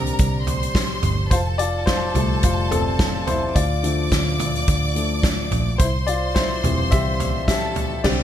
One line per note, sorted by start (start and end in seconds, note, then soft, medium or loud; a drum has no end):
0.00 0.15 C2 loud
0.00 1.33 D3 medium
0.00 1.33 G3 medium
0.00 1.33 C4 medium
0.00 0.72 G4 medium
0.00 0.44 A#4 medium
0.00 0.71 D5 loud
0.00 0.44 A#5 loud
0.06 closed hi-hat soft
0.19 0.99 C2 loud
0.19 kick loud
0.19 closed hi-hat loud
0.47 1.30 C5 medium
0.47 1.30 C6 medium
0.47 closed hi-hat medium
0.47 floor tom medium
0.63 closed hi-hat soft
0.75 kick loud
0.75 snare loud
0.75 closed hi-hat loud
1.03 1.29 G1 medium
1.03 closed hi-hat medium
1.03 floor tom medium
1.31 2.11 F1 loud
1.31 1.38 F4 medium
1.31 3.52 A4 medium
1.31 1.37 C5 loud
1.31 3.52 A5 medium
1.31 kick loud
1.31 closed hi-hat loud
1.58 1.86 F4 medium
1.58 1.88 D5 loud
1.58 closed hi-hat medium
1.86 2.40 F4 medium
1.86 2.39 C5 loud
1.86 kick loud
1.86 snare loud
1.86 closed hi-hat medium
2.14 2.41 C2 loud
2.14 3.51 F3 medium
2.14 3.51 G3 medium
2.14 3.51 A3 medium
2.14 closed hi-hat medium
2.14 floor tom medium
2.43 3.52 F1 loud
2.43 2.70 F4 medium
2.43 2.72 C5 medium
2.43 kick loud
2.43 closed hi-hat loud
2.71 3.24 C4 medium
2.71 3.23 A4 loud
2.71 closed hi-hat medium
2.71 floor tom medium
2.99 kick loud
2.99 snare loud
2.99 closed hi-hat loud
3.27 3.54 E4 medium
3.27 3.53 C5 medium
3.27 closed hi-hat medium
3.27 floor tom medium
3.55 4.08 D2 loud
3.55 5.20 F4 medium
3.55 5.20 D5 medium
3.55 5.76 D5 medium
3.55 5.76 D6 loud
3.55 kick loud
3.55 closed hi-hat loud
3.83 4.63 D3 medium
3.83 4.64 F3 medium
3.83 4.64 A3 medium
3.83 closed hi-hat medium
4.12 4.64 D2 medium
4.12 kick loud
4.12 snare loud
4.12 closed hi-hat medium
4.40 closed hi-hat medium
4.40 floor tom medium
4.55 closed hi-hat soft
4.68 5.48 D2 loud
4.68 kick loud
4.68 closed hi-hat loud
4.95 5.21 D3 soft
4.95 5.21 F3 soft
4.95 5.21 A3 medium
4.95 closed hi-hat medium
5.23 kick loud
5.23 snare loud
5.23 closed hi-hat loud
5.51 5.78 A#1 loud
5.51 closed hi-hat medium
5.51 floor tom medium
5.78 6.60 C2 loud
5.78 5.87 E4 medium
5.78 5.85 C5 loud
5.78 7.45 C5 medium
5.78 7.45 C6 medium
5.78 kick loud
5.78 closed hi-hat loud
6.07 6.15 F4 medium
6.07 6.13 D5 loud
6.07 closed hi-hat medium
6.35 6.89 E4 medium
6.35 6.93 C5 loud
6.35 kick loud
6.35 snare loud
6.35 closed hi-hat medium
6.64 6.92 E1 loud
6.64 7.03 E3 medium
6.64 7.03 G3 medium
6.64 7.03 C4 medium
6.64 closed hi-hat medium
6.64 floor tom medium
6.91 8.01 C2 loud
6.91 7.45 G4 medium
6.91 7.46 E5 loud
6.91 kick loud
6.91 closed hi-hat loud
7.20 closed hi-hat medium
7.20 floor tom medium
7.48 8.01 G4 medium
7.48 8.04 A4 medium
7.48 8.06 E5 loud
7.48 8.04 A5 medium
7.48 kick loud
7.48 snare loud
7.48 closed hi-hat loud
7.76 closed hi-hat medium
7.76 floor tom medium
8.04 8.23 C2 loud
8.04 8.23 D3 loud
8.04 8.23 G3 loud
8.04 8.23 C4 loud
8.04 8.23 G4 loud
8.04 8.23 D5 loud
8.04 8.23 G5 loud
8.04 kick loud
8.04 snare loud
8.04 crash medium